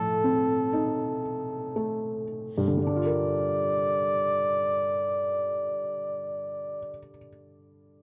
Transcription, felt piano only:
0.00 2.78 A2 soft
0.00 1.19 F3 soft
0.00 1.71 A3 soft
0.24 2.24 C4 soft
0.73 2.78 D#4 soft
1.76 2.79 A3 soft
2.58 6.79 G2 soft
2.68 6.89 D3 soft
2.77 6.99 G3 soft
2.87 7.08 D4 soft
2.96 7.18 F4 soft
3.06 7.28 A#4 soft

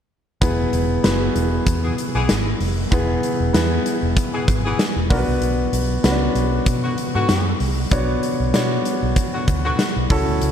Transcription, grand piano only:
0.41 0.97 B3 medium
0.41 0.97 E4 medium
0.41 0.97 G#4 medium
0.41 0.97 B4 medium
1.03 2.14 B3 medium
1.03 2.14 E4 medium
1.03 1.11 F#4 medium
1.03 2.14 B4 medium
1.11 2.17 G#4 medium
2.91 3.46 B3 medium
2.91 3.47 E4 medium
2.91 3.47 G#4 medium
2.91 3.47 B4 medium
3.53 4.64 B3 medium
3.53 4.64 E4 medium
3.53 4.64 G#4 medium
3.53 4.64 B4 medium
5.10 5.93 B3 medium
5.10 5.93 D4 medium
5.10 5.93 F#4 medium
5.10 5.18 A#4 medium
5.17 5.97 B4 loud
6.04 7.14 B3 medium
6.04 6.11 C#4 medium
6.04 7.14 F#4 medium
6.04 7.15 B4 medium
6.11 7.17 D4 medium
7.91 8.47 B3 medium
7.91 8.47 D4 medium
7.91 8.47 F#4 medium
7.91 8.47 C#5 medium
8.54 9.64 B3 medium
8.54 9.64 D4 medium
8.54 9.64 F#4 medium
8.54 9.64 C#5 medium
10.10 10.52 C#4 medium
10.10 10.52 E4 medium
10.10 10.52 F#4 medium
10.10 10.52 A4 medium

